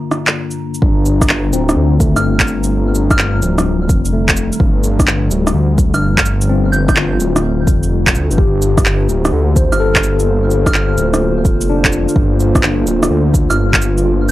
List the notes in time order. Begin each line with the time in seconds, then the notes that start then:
Already playing: G2 D3 A#3 D4 F4 A#5
0.11 cross-stick, shaker
0.27 clap, shaker
0.51 shaker
0.74 shaker
0.82 G1 D3 D4, kick
1.06 cabasa
1.21 G3, kick, cross-stick, shaker
1.29 clap
1.53 D1 C4, cabasa
1.69 cross-stick, shaker
1.76 D2
2.00 A3, kick, cabasa, shaker
2.16 G1 F6, cross-stick, shaker
2.40 kick, clap, shaker
2.48 cabasa
2.64 shaker
2.95 cabasa
3.11 F6, kick, cross-stick, shaker
3.19 clap
3.42 D1 F3, cabasa
3.58 cross-stick, shaker
3.89 F1, kick, cabasa, shaker
4.05 shaker
4.13 A3
4.29 kick, clap, shaker
4.37 cabasa
4.52 shaker
4.60 G1, kick
4.84 cabasa
4.99 kick, cross-stick, shaker
5.07 clap
5.31 D1 G3, cabasa
5.47 cross-stick, shaker
5.54 D2
5.78 kick, cabasa, shaker
5.94 G1 F6, cross-stick, shaker
6.17 kick, clap, shaker
6.26 cabasa
6.41 shaker
6.49 C4
6.72 G6, cabasa
6.88 G6, kick, cross-stick, shaker
6.97 F4, clap
7.20 D1, cabasa
7.36 cross-stick, shaker
7.67 F1, kick, cabasa, shaker
7.83 shaker
8.07 kick, clap, shaker
8.14 D2, cabasa
8.31 G1, shaker
8.38 G1 G4, kick
8.62 cabasa
8.69 F4 C5
8.73 A#3
8.78 kick, cross-stick, shaker
8.86 clap
9.09 D1, cabasa
9.25 cross-stick, shaker
9.32 D2
9.56 C5, kick, cabasa, shaker
9.72 G1 F6, cross-stick, shaker
9.80 A4
9.95 kick, clap, shaker
10.04 cabasa
10.20 shaker
10.51 cabasa
10.66 F6, kick, cross-stick, shaker
10.74 clap
10.98 D1, cabasa
11.14 cross-stick, shaker
11.45 F1, kick, cabasa, shaker
11.61 shaker
11.70 D4
11.84 kick, clap, shaker
11.93 cabasa
12.09 shaker
12.16 G1, kick
12.40 cabasa
12.55 kick, cross-stick, shaker
12.63 clap
12.87 D1, cabasa
13.03 cross-stick, shaker
13.10 D2
13.34 kick, cabasa, shaker
13.50 G1 F6, cross-stick, shaker
13.73 kick, clap, shaker
13.82 cabasa
13.98 shaker
14.05 F4